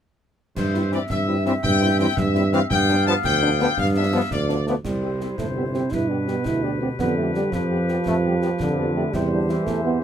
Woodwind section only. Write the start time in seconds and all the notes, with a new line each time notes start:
0.57 C4 E5
2.72 B3 F5
4.85 E4 C5
5.93 G4 B4
7.00 G4 B4
7.54 G4 B4
9.14 G4 C5